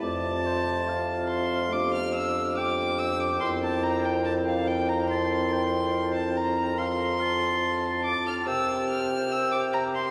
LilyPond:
<<
  \new Staff \with { instrumentName = "Violin" } { \time 4/4 \key f \major \tempo 4 = 71 a''4. c'''8 d'''16 f'''16 e'''8 d'''8 e'''16 d'''16 | c'''16 a''16 bes''16 g''16 a''16 f''16 g''16 bes''16 c'''4~ c'''16 a''16 bes''8 | c'''4. d'''16 f'''16 e'''8 f'''8 e'''16 d'''16 bes''16 c'''16 | }
  \new Staff \with { instrumentName = "Oboe" } { \time 4/4 \key f \major d''8 c''8 f''4 f''4 g''4~ | g''2 a''8 g''4 r8 | f''8 a''4. g''2 | }
  \new Staff \with { instrumentName = "Pipe organ" } { \time 4/4 \key f \major <a c' f'>2 <b d' g'>2 | <c' e' bes'>1 | <c' f' a'>2 <c' g' bes'>2 | }
  \new Staff \with { instrumentName = "Pipe organ" } { \clef bass \time 4/4 \key f \major f,1 | f,1~ | f,4. r8 c2 | }
  \new Staff \with { instrumentName = "Bassoon" } { \clef bass \time 4/4 \key f \major f,1 | f,1~ | f,4. r8 c2 | }
>>